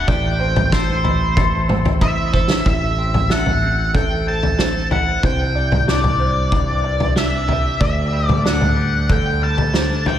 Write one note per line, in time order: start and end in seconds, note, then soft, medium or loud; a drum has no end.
0.00 1.04 A3 medium
0.08 2.61 A1 medium
0.08 1.69 A2 medium
0.08 0.40 D5 medium
0.08 0.74 G5 medium
0.08 kick medium
0.08 floor tom medium
0.39 1.68 C4 medium
0.39 1.04 C5 medium
0.56 floor tom medium
0.56 mid tom medium
0.72 1.36 A4 medium
0.72 1.65 C5 medium
0.72 kick medium
0.72 snare medium
1.04 2.00 E4 medium
1.04 1.69 B5 medium
1.04 floor tom medium
1.37 2.32 A4 medium
1.37 kick medium
1.37 floor tom medium
1.69 2.66 C4 medium
1.69 2.31 C5 medium
1.69 mid tom medium
1.85 floor tom medium
2.01 2.66 E4 medium
2.01 2.66 E5 medium
2.01 kick medium
2.33 2.65 A4 medium
2.33 2.65 C5 medium
2.33 kick medium
2.50 snare medium
2.65 5.19 A1 medium
2.65 4.27 A2 medium
2.65 3.28 E5 medium
2.65 3.33 E5 medium
2.65 kick medium
2.65 floor tom medium
2.98 3.61 C4 soft
3.14 floor tom medium
3.14 mid tom medium
3.29 4.57 A4 medium
3.29 3.94 E5 medium
3.29 3.91 F#5 medium
3.29 snare medium
3.46 floor tom medium
3.46 mid tom medium
3.62 4.26 C4 medium
3.94 5.23 A3 medium
3.94 4.58 A4 medium
3.94 4.25 G5 medium
3.94 kick medium
3.94 floor tom medium
4.27 5.23 C4 soft
4.27 4.88 A5 medium
4.43 floor tom medium
4.58 5.23 A4 medium
4.58 5.22 C5 medium
4.58 snare medium
4.91 5.23 E4 soft
4.91 5.25 F#5 medium
4.91 floor tom medium
5.23 6.84 C2 medium
5.23 7.77 C2 medium
5.23 5.55 C5 medium
5.23 5.84 G5 medium
5.23 kick medium
5.23 floor tom medium
5.55 6.18 C3 medium
5.55 6.20 D5 medium
5.72 floor tom medium
5.72 mid tom medium
5.88 7.15 D4 medium
5.88 7.13 D5 medium
5.88 snare medium
6.04 floor tom medium
6.04 mid tom medium
6.19 6.83 C3 medium
6.19 6.84 C5 medium
6.52 7.81 G2 medium
6.52 kick medium
6.52 floor tom medium
6.84 7.81 C3 medium
6.84 7.48 D5 medium
7.00 floor tom medium
7.16 8.44 D4 medium
7.16 7.81 E5 medium
7.16 snare medium
7.48 8.12 G3 medium
7.48 7.81 E5 medium
7.48 floor tom medium
7.80 9.41 D2 medium
7.80 10.19 D2 medium
7.80 8.44 D5 medium
7.80 8.27 E5 medium
7.80 kick medium
7.80 floor tom medium
8.12 8.76 G3 medium
8.27 8.42 D5 medium
8.27 floor tom medium
8.27 mid tom medium
8.44 9.72 D4 medium
8.44 9.10 D5 medium
8.44 9.11 F#5 medium
8.44 snare medium
8.61 floor tom medium
8.61 mid tom medium
8.77 9.41 G3 medium
9.09 10.19 D3 medium
9.09 9.74 A4 medium
9.09 9.41 G5 medium
9.09 kick medium
9.09 floor tom medium
9.42 10.19 G3 medium
9.42 10.07 A5 medium
9.58 floor tom medium
9.73 10.19 D4 medium
9.73 10.19 C5 medium
9.73 snare medium
10.06 10.19 A3 medium
10.06 10.19 G5 medium
10.06 floor tom medium